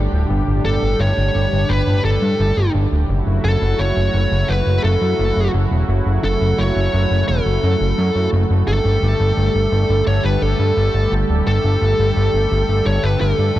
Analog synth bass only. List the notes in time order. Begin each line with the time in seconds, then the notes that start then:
0.13 D1
0.30 G1
0.47 G1
0.65 G1
0.82 G1
1.00 G1
1.17 G1
1.35 G1
1.52 G1
1.70 G1
1.87 G1
2.05 G1
2.22 G2
2.40 G1
2.57 G1
2.74 G1
2.92 D1
3.09 F#1
3.27 F#1
3.44 F#1
3.62 F#1
3.79 F#1
3.97 F#1
4.14 F#1
4.32 F#1
4.49 F#1
4.67 F#1
4.84 F#1
5.02 F#2
5.19 F#1
5.36 F#1
5.54 F#1
5.71 E1
5.89 F#1
6.06 F#1
6.24 F#1
6.41 F#1
6.59 F#1
6.76 F#1
6.94 F#1
7.11 F#1
7.29 E1
7.46 F#1
7.63 F#2
7.81 F#1
7.98 F#2
8.16 F#2
8.33 F#1
8.50 F#1
8.68 G1
8.85 G1
9.02 G1
9.20 G1
9.37 G1
9.55 G1
9.72 G1
9.90 G1
10.07 G1
10.25 G1
10.42 G1
10.59 G2
10.77 G1
10.94 G1
11.12 G1
11.29 D1
11.47 G1
11.64 G1
11.82 G1
11.99 G1
12.17 G1
12.34 G1
12.51 G1
12.69 G1
12.86 G1
13.04 G1
13.21 G1
13.39 G2
13.56 G1